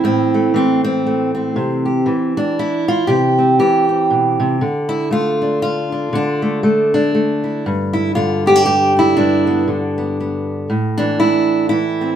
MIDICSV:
0, 0, Header, 1, 2, 480
1, 0, Start_track
1, 0, Key_signature, 0, "minor"
1, 0, Tempo, 507614
1, 28, Time_signature, 3, 2, 24, 8
1, 11495, End_track
2, 0, Start_track
2, 0, Title_t, "Steel-string acoustic guitar"
2, 0, Program_c, 0, 25
2, 0, Note_on_c, 0, 52, 60
2, 0, Note_on_c, 0, 64, 96
2, 35, Note_on_c, 0, 45, 72
2, 44, Note_on_c, 0, 60, 87
2, 325, Note_on_c, 0, 57, 46
2, 506, Note_off_c, 0, 52, 0
2, 509, Note_on_c, 0, 52, 59
2, 511, Note_off_c, 0, 64, 0
2, 516, Note_off_c, 0, 60, 0
2, 528, Note_on_c, 0, 60, 78
2, 787, Note_off_c, 0, 60, 0
2, 799, Note_on_c, 0, 60, 79
2, 1004, Note_off_c, 0, 57, 0
2, 1008, Note_on_c, 0, 57, 43
2, 1262, Note_off_c, 0, 60, 0
2, 1273, Note_on_c, 0, 60, 49
2, 1471, Note_off_c, 0, 45, 0
2, 1475, Note_on_c, 0, 48, 73
2, 1754, Note_on_c, 0, 67, 48
2, 1782, Note_off_c, 0, 57, 0
2, 1943, Note_off_c, 0, 52, 0
2, 1947, Note_on_c, 0, 52, 61
2, 1952, Note_off_c, 0, 48, 0
2, 2239, Note_off_c, 0, 60, 0
2, 2243, Note_on_c, 0, 62, 82
2, 2435, Note_off_c, 0, 67, 0
2, 2452, Note_on_c, 0, 64, 93
2, 2713, Note_off_c, 0, 62, 0
2, 2727, Note_on_c, 0, 65, 93
2, 2902, Note_off_c, 0, 64, 0
2, 2905, Note_on_c, 0, 67, 99
2, 2914, Note_on_c, 0, 48, 70
2, 2921, Note_off_c, 0, 65, 0
2, 3201, Note_on_c, 0, 60, 44
2, 3387, Note_off_c, 0, 67, 0
2, 3392, Note_off_c, 0, 48, 0
2, 3393, Note_off_c, 0, 52, 0
2, 3396, Note_on_c, 0, 52, 60
2, 3400, Note_on_c, 0, 67, 83
2, 3666, Note_off_c, 0, 60, 0
2, 3678, Note_on_c, 0, 60, 43
2, 3882, Note_on_c, 0, 47, 54
2, 4150, Note_off_c, 0, 47, 0
2, 4156, Note_on_c, 0, 48, 57
2, 4332, Note_off_c, 0, 60, 0
2, 4354, Note_off_c, 0, 67, 0
2, 4356, Note_off_c, 0, 48, 0
2, 4357, Note_off_c, 0, 52, 0
2, 4361, Note_on_c, 0, 50, 65
2, 4622, Note_on_c, 0, 64, 93
2, 4829, Note_off_c, 0, 64, 0
2, 4830, Note_on_c, 0, 57, 56
2, 4846, Note_on_c, 0, 65, 93
2, 5121, Note_on_c, 0, 62, 41
2, 5305, Note_off_c, 0, 65, 0
2, 5317, Note_on_c, 0, 65, 92
2, 5597, Note_off_c, 0, 62, 0
2, 5601, Note_on_c, 0, 62, 44
2, 5765, Note_off_c, 0, 57, 0
2, 5782, Note_off_c, 0, 50, 0
2, 5793, Note_on_c, 0, 50, 70
2, 5815, Note_off_c, 0, 62, 0
2, 5819, Note_on_c, 0, 62, 88
2, 6073, Note_on_c, 0, 57, 49
2, 6260, Note_off_c, 0, 57, 0
2, 6271, Note_on_c, 0, 57, 66
2, 6273, Note_off_c, 0, 65, 0
2, 6552, Note_off_c, 0, 62, 0
2, 6563, Note_on_c, 0, 62, 82
2, 6746, Note_off_c, 0, 57, 0
2, 6758, Note_on_c, 0, 57, 43
2, 7033, Note_on_c, 0, 64, 44
2, 7208, Note_off_c, 0, 57, 0
2, 7233, Note_off_c, 0, 64, 0
2, 7239, Note_off_c, 0, 62, 0
2, 7244, Note_on_c, 0, 43, 77
2, 7503, Note_on_c, 0, 64, 87
2, 7704, Note_off_c, 0, 50, 0
2, 7704, Note_off_c, 0, 64, 0
2, 7708, Note_on_c, 0, 65, 97
2, 7716, Note_on_c, 0, 50, 61
2, 7998, Note_on_c, 0, 59, 46
2, 8007, Note_off_c, 0, 65, 0
2, 8011, Note_on_c, 0, 67, 106
2, 8091, Note_off_c, 0, 59, 0
2, 8091, Note_on_c, 0, 62, 40
2, 8173, Note_off_c, 0, 67, 0
2, 8185, Note_on_c, 0, 67, 101
2, 8465, Note_off_c, 0, 62, 0
2, 8478, Note_on_c, 0, 62, 47
2, 8495, Note_off_c, 0, 67, 0
2, 8499, Note_on_c, 0, 64, 94
2, 8651, Note_off_c, 0, 43, 0
2, 8651, Note_off_c, 0, 62, 0
2, 8667, Note_on_c, 0, 62, 86
2, 8678, Note_on_c, 0, 43, 72
2, 8955, Note_on_c, 0, 59, 48
2, 9138, Note_off_c, 0, 50, 0
2, 9143, Note_off_c, 0, 64, 0
2, 9149, Note_on_c, 0, 50, 59
2, 9423, Note_off_c, 0, 59, 0
2, 9435, Note_on_c, 0, 59, 43
2, 9634, Note_off_c, 0, 59, 0
2, 9649, Note_on_c, 0, 59, 41
2, 10088, Note_off_c, 0, 43, 0
2, 10093, Note_off_c, 0, 59, 0
2, 10107, Note_off_c, 0, 62, 0
2, 10108, Note_off_c, 0, 50, 0
2, 10115, Note_on_c, 0, 45, 67
2, 10379, Note_on_c, 0, 62, 95
2, 10397, Note_on_c, 0, 52, 64
2, 10587, Note_on_c, 0, 64, 99
2, 11044, Note_off_c, 0, 64, 0
2, 11056, Note_on_c, 0, 64, 99
2, 11066, Note_off_c, 0, 62, 0
2, 11070, Note_off_c, 0, 52, 0
2, 11074, Note_on_c, 0, 52, 56
2, 11358, Note_on_c, 0, 60, 45
2, 11495, Note_off_c, 0, 45, 0
2, 11495, Note_off_c, 0, 52, 0
2, 11495, Note_off_c, 0, 60, 0
2, 11495, Note_off_c, 0, 64, 0
2, 11495, End_track
0, 0, End_of_file